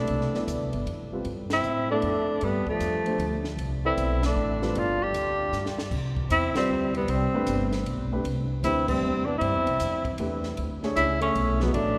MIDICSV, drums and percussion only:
0, 0, Header, 1, 2, 480
1, 0, Start_track
1, 0, Tempo, 388601
1, 101, Time_signature, 3, 2, 24, 8
1, 14801, End_track
2, 0, Start_track
2, 0, Title_t, "Drums"
2, 91, Note_on_c, 9, 51, 50
2, 214, Note_off_c, 9, 51, 0
2, 259, Note_on_c, 9, 38, 24
2, 382, Note_off_c, 9, 38, 0
2, 424, Note_on_c, 9, 38, 39
2, 548, Note_off_c, 9, 38, 0
2, 590, Note_on_c, 9, 44, 58
2, 590, Note_on_c, 9, 51, 57
2, 714, Note_off_c, 9, 44, 0
2, 714, Note_off_c, 9, 51, 0
2, 899, Note_on_c, 9, 51, 40
2, 1022, Note_off_c, 9, 51, 0
2, 1072, Note_on_c, 9, 51, 53
2, 1196, Note_off_c, 9, 51, 0
2, 1539, Note_on_c, 9, 51, 46
2, 1663, Note_off_c, 9, 51, 0
2, 1854, Note_on_c, 9, 38, 72
2, 1856, Note_on_c, 9, 51, 62
2, 1977, Note_off_c, 9, 38, 0
2, 1980, Note_off_c, 9, 51, 0
2, 2014, Note_on_c, 9, 44, 45
2, 2137, Note_off_c, 9, 44, 0
2, 2494, Note_on_c, 9, 51, 44
2, 2618, Note_off_c, 9, 51, 0
2, 2977, Note_on_c, 9, 51, 51
2, 3100, Note_off_c, 9, 51, 0
2, 3294, Note_on_c, 9, 36, 53
2, 3418, Note_off_c, 9, 36, 0
2, 3463, Note_on_c, 9, 44, 57
2, 3463, Note_on_c, 9, 51, 55
2, 3587, Note_off_c, 9, 44, 0
2, 3587, Note_off_c, 9, 51, 0
2, 3777, Note_on_c, 9, 51, 41
2, 3901, Note_off_c, 9, 51, 0
2, 3947, Note_on_c, 9, 51, 53
2, 4070, Note_off_c, 9, 51, 0
2, 4253, Note_on_c, 9, 38, 42
2, 4377, Note_off_c, 9, 38, 0
2, 4428, Note_on_c, 9, 51, 52
2, 4552, Note_off_c, 9, 51, 0
2, 4910, Note_on_c, 9, 44, 47
2, 4910, Note_on_c, 9, 51, 57
2, 5034, Note_off_c, 9, 44, 0
2, 5034, Note_off_c, 9, 51, 0
2, 5224, Note_on_c, 9, 38, 72
2, 5226, Note_on_c, 9, 51, 59
2, 5347, Note_off_c, 9, 38, 0
2, 5350, Note_off_c, 9, 51, 0
2, 5707, Note_on_c, 9, 38, 42
2, 5830, Note_off_c, 9, 38, 0
2, 5871, Note_on_c, 9, 51, 53
2, 5995, Note_off_c, 9, 51, 0
2, 6353, Note_on_c, 9, 44, 47
2, 6353, Note_on_c, 9, 51, 62
2, 6476, Note_off_c, 9, 44, 0
2, 6476, Note_off_c, 9, 51, 0
2, 6824, Note_on_c, 9, 38, 35
2, 6827, Note_on_c, 9, 44, 45
2, 6948, Note_off_c, 9, 38, 0
2, 6950, Note_off_c, 9, 44, 0
2, 6989, Note_on_c, 9, 38, 50
2, 7113, Note_off_c, 9, 38, 0
2, 7145, Note_on_c, 9, 38, 70
2, 7268, Note_off_c, 9, 38, 0
2, 7302, Note_on_c, 9, 36, 66
2, 7304, Note_on_c, 9, 49, 65
2, 7426, Note_off_c, 9, 36, 0
2, 7428, Note_off_c, 9, 49, 0
2, 7616, Note_on_c, 9, 36, 57
2, 7739, Note_off_c, 9, 36, 0
2, 7786, Note_on_c, 9, 44, 47
2, 7786, Note_on_c, 9, 51, 65
2, 7909, Note_off_c, 9, 44, 0
2, 7909, Note_off_c, 9, 51, 0
2, 8093, Note_on_c, 9, 38, 79
2, 8095, Note_on_c, 9, 51, 62
2, 8216, Note_off_c, 9, 38, 0
2, 8219, Note_off_c, 9, 51, 0
2, 8578, Note_on_c, 9, 51, 44
2, 8702, Note_off_c, 9, 51, 0
2, 8746, Note_on_c, 9, 51, 62
2, 8870, Note_off_c, 9, 51, 0
2, 9222, Note_on_c, 9, 44, 62
2, 9222, Note_on_c, 9, 51, 67
2, 9345, Note_off_c, 9, 44, 0
2, 9345, Note_off_c, 9, 51, 0
2, 9539, Note_on_c, 9, 38, 47
2, 9541, Note_on_c, 9, 51, 43
2, 9662, Note_off_c, 9, 38, 0
2, 9665, Note_off_c, 9, 51, 0
2, 9711, Note_on_c, 9, 51, 53
2, 9834, Note_off_c, 9, 51, 0
2, 10188, Note_on_c, 9, 51, 59
2, 10312, Note_off_c, 9, 51, 0
2, 10669, Note_on_c, 9, 44, 60
2, 10669, Note_on_c, 9, 51, 66
2, 10793, Note_off_c, 9, 44, 0
2, 10793, Note_off_c, 9, 51, 0
2, 10971, Note_on_c, 9, 49, 77
2, 10973, Note_on_c, 9, 36, 80
2, 11095, Note_off_c, 9, 49, 0
2, 11096, Note_off_c, 9, 36, 0
2, 11625, Note_on_c, 9, 51, 55
2, 11748, Note_off_c, 9, 51, 0
2, 11942, Note_on_c, 9, 51, 45
2, 12065, Note_off_c, 9, 51, 0
2, 12102, Note_on_c, 9, 44, 61
2, 12102, Note_on_c, 9, 51, 61
2, 12225, Note_off_c, 9, 44, 0
2, 12225, Note_off_c, 9, 51, 0
2, 12411, Note_on_c, 9, 36, 58
2, 12413, Note_on_c, 9, 51, 45
2, 12535, Note_off_c, 9, 36, 0
2, 12536, Note_off_c, 9, 51, 0
2, 12573, Note_on_c, 9, 51, 57
2, 12696, Note_off_c, 9, 51, 0
2, 12884, Note_on_c, 9, 38, 34
2, 13008, Note_off_c, 9, 38, 0
2, 13057, Note_on_c, 9, 51, 57
2, 13180, Note_off_c, 9, 51, 0
2, 13376, Note_on_c, 9, 38, 33
2, 13499, Note_off_c, 9, 38, 0
2, 13543, Note_on_c, 9, 44, 52
2, 13543, Note_on_c, 9, 51, 66
2, 13667, Note_off_c, 9, 44, 0
2, 13667, Note_off_c, 9, 51, 0
2, 13851, Note_on_c, 9, 51, 47
2, 13975, Note_off_c, 9, 51, 0
2, 14024, Note_on_c, 9, 51, 59
2, 14148, Note_off_c, 9, 51, 0
2, 14330, Note_on_c, 9, 38, 44
2, 14453, Note_off_c, 9, 38, 0
2, 14501, Note_on_c, 9, 51, 59
2, 14625, Note_off_c, 9, 51, 0
2, 14801, End_track
0, 0, End_of_file